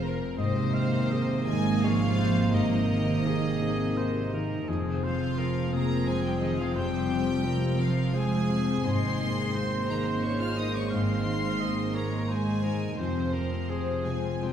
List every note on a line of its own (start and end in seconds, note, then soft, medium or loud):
0.00 0.13 F1 medium
0.00 0.40 F2 medium
0.00 0.41 F2 medium
0.00 0.19 C3 medium
0.00 0.12 F3 medium
0.00 0.17 C4 medium
0.00 0.40 C4 soft
0.00 0.13 F4 medium
0.00 0.41 F4 medium
0.00 0.40 G#4 soft
0.00 0.40 C5 medium
0.00 0.41 F5 medium
0.00 0.82 C6 medium
0.04 0.40 A#4 medium
0.21 0.41 C3 medium
0.38 4.64 G#1 medium
0.38 2.50 G#2 medium
0.38 2.54 G#2 medium
0.38 1.44 C3 medium
0.38 4.64 C3 medium
0.38 4.65 C3 medium
0.38 4.64 A#3 medium
0.38 1.45 C4 medium
0.38 1.43 C5 medium
0.38 0.76 D#5 medium
0.58 2.36 D#3 soft
0.74 4.65 A#3 medium
0.74 1.33 C4 soft
0.74 1.14 F5 medium
0.93 4.83 D#4 soft
1.11 1.44 G#4 soft
1.11 1.44 A#4 soft
1.11 3.25 A#4 medium
1.11 1.86 D#5 medium
1.47 2.05 D#3 soft
1.47 1.83 G#3 medium
1.47 1.85 G#4 medium
1.47 5.38 D#5 medium
1.47 1.83 G#5 medium
1.67 3.79 A#5 medium
1.84 2.54 F3 medium
1.84 2.55 F4 medium
1.84 2.15 G#4 soft
1.84 2.16 A#4 soft
1.84 2.20 C#5 medium
1.84 2.54 F5 medium
2.02 3.07 C4 soft
2.19 2.76 C4 soft
2.19 2.55 C5 medium
2.37 2.90 D#3 soft
2.54 4.63 G#2 medium
2.54 4.71 G#2 medium
2.54 4.64 D#3 medium
2.54 4.64 D#4 medium
2.54 3.28 A#4 medium
2.54 4.68 D#5 medium
2.90 3.47 D#3 soft
2.90 4.50 D#3 soft
3.09 6.99 C4 soft
3.26 3.98 G#4 medium
3.26 3.59 G#4 soft
3.26 4.71 A#4 medium
3.26 3.59 A#4 soft
3.62 4.18 C4 soft
3.81 4.71 A#5 soft
3.97 4.29 G#4 soft
3.97 4.29 A#4 soft
3.97 4.32 C5 medium
4.33 4.68 D#3 soft
4.33 4.70 A#4 medium
4.51 4.71 D#3 soft
4.68 8.81 F1 medium
4.68 6.75 F2 soft
4.68 6.73 F2 medium
4.68 8.81 F3 medium
4.68 8.68 F3 medium
4.68 8.81 C4 medium
4.68 9.51 C4 medium
4.68 5.05 G#4 medium
4.86 6.57 C3 soft
5.03 5.69 F3 medium
5.03 8.93 F3 soft
5.03 5.59 C4 soft
5.03 5.69 F4 medium
5.03 5.40 C5 medium
5.03 5.70 F5 medium
5.38 5.70 G#4 soft
5.38 5.75 A#4 medium
5.38 5.70 C5 soft
5.56 9.46 F4 soft
5.73 6.28 C3 soft
5.73 6.07 A#3 medium
5.73 6.77 G#4 medium
5.73 6.08 A#4 medium
5.73 6.08 A#5 medium
5.90 7.96 C6 medium
6.07 6.25 G#3 medium
6.07 6.38 G#4 soft
6.07 6.25 G#4 medium
6.07 6.39 C5 soft
6.07 6.24 G#5 medium
6.25 6.42 G3 medium
6.25 6.43 G4 medium
6.25 6.42 G5 medium
6.41 6.59 D#3 medium
6.41 6.97 C4 soft
6.41 6.58 D#4 medium
6.41 6.58 D#5 medium
6.58 7.10 C3 soft
6.58 6.76 F3 medium
6.58 6.76 F4 medium
6.58 6.76 F5 medium
6.74 8.87 F2 soft
6.74 8.81 F2 medium
6.74 7.78 G3 medium
6.74 7.79 G4 medium
6.74 7.21 C5 medium
6.74 7.77 G5 medium
7.10 7.66 C3 soft
7.10 8.66 C3 soft
7.44 7.76 F4 soft
7.44 8.11 A#4 medium
7.44 7.76 C5 soft
7.79 8.15 F3 medium
7.79 8.36 C4 soft
7.79 8.15 F4 medium
7.79 8.14 F5 medium
7.97 10.05 C6 medium
8.13 8.85 G#3 medium
8.13 8.46 G#4 soft
8.13 8.84 G#4 medium
8.13 8.83 G#4 medium
8.13 8.46 C5 soft
8.13 8.85 G#5 medium
8.50 8.84 C3 soft
8.67 8.87 C3 soft
8.84 12.94 G#1 medium
8.84 10.91 G#2 medium
8.84 10.88 G#2 medium
8.84 12.95 G#3 medium
8.84 12.99 A#3 medium
8.84 9.87 C4 medium
8.84 9.53 G#4 medium
8.84 9.88 C5 medium
8.84 9.89 C6 medium
9.02 10.74 D#3 soft
9.19 10.56 A#3 soft
9.19 9.75 A#3 soft
9.37 13.27 D#4 soft
9.54 12.98 A#3 medium
9.54 9.86 G#4 soft
9.54 10.89 C5 medium
9.54 9.86 C5 soft
9.54 13.45 D#5 medium
9.88 10.45 D#3 soft
9.88 10.06 A#3 medium
9.88 10.05 A#4 medium
9.88 10.06 A#5 medium
10.04 10.23 C4 medium
10.04 10.22 C5 medium
10.04 10.22 C6 medium
10.04 12.12 C6 soft
10.21 10.41 C#4 medium
10.21 10.55 G#4 soft
10.21 10.55 C5 soft
10.21 10.40 C#5 medium
10.21 10.39 C#6 medium
10.40 10.58 F4 medium
10.40 10.58 F5 medium
10.40 10.57 F6 medium
10.57 11.13 A#3 soft
10.57 10.75 D#4 medium
10.57 10.74 D#5 medium
10.57 10.75 D#6 medium
10.75 11.26 D#3 soft
10.75 10.92 C#4 medium
10.75 10.92 C#5 medium
10.75 10.92 C#6 medium
10.91 12.95 G#2 medium
10.91 13.02 G#2 soft
10.91 11.93 C4 medium
10.91 11.95 C5 medium
10.91 11.62 F5 medium
10.91 11.95 C6 medium
11.10 12.65 A#3 soft
11.26 11.81 D#3 soft
11.26 12.81 D#3 soft
11.60 11.93 G#4 soft
11.60 11.93 C5 soft
11.60 11.97 D#5 medium
11.79 12.29 A#4 soft
11.95 12.30 A#3 medium
11.95 12.51 A#3 soft
11.95 12.30 A#4 medium
11.95 12.31 C#5 medium
11.95 12.30 A#5 medium
12.13 14.23 C6 soft
12.29 12.97 G#3 medium
12.29 12.98 G#4 medium
12.29 12.61 G#4 soft
12.29 13.01 A#4 soft
12.29 12.64 C5 soft
12.29 12.61 C5 soft
12.29 12.99 G#5 medium
12.47 13.51 C4 soft
12.63 12.99 D#3 soft
12.63 13.02 A#3 soft
12.63 12.97 A#4 soft
12.82 13.02 D#3 soft
12.97 14.53 F1 medium
12.97 14.53 F2 soft
12.97 14.05 C3 medium
12.97 14.53 F3 soft
12.97 14.53 C4 soft
12.97 14.03 C4 soft
12.97 14.53 C4 soft
12.97 13.35 C5 medium
12.97 14.03 C5 medium
13.17 14.53 C3 soft
13.33 13.91 C4 soft
13.33 13.71 A#4 medium
13.52 14.53 C4 soft
13.70 14.17 G#4 soft
13.70 14.02 G#4 soft
13.70 14.05 C5 soft
13.70 14.02 C5 soft
13.88 14.53 F4 soft
14.03 14.53 C3 soft
14.03 14.43 G#3 medium
14.03 14.41 G#4 medium
14.03 14.53 C5 soft
14.03 14.42 G#5 medium
14.25 14.53 C6 soft
14.41 14.53 G3 soft
14.41 14.53 F4 soft
14.41 14.53 G4 medium
14.41 14.53 C5 soft
14.41 14.53 G5 medium